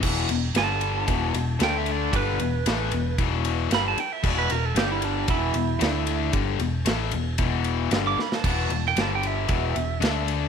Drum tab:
CC |x---------------|----------------|x---------------|----------------|
RD |--x-x-x-x-x-x-x-|x-x-x-x-x-x-x-x-|--x-x-x-x-x-x-x-|x-x-x-x-x-x-x---|
SD |----o-------o---|----o-------o---|----o-------o---|----o-------o-oo|
BD |o-------o-------|o-------o-------|o-------o-------|o-------o-------|

CC |x---------------|
RD |--x-x-x-x-x-x-x-|
SD |---oo-------o---|
BD |o-------o-------|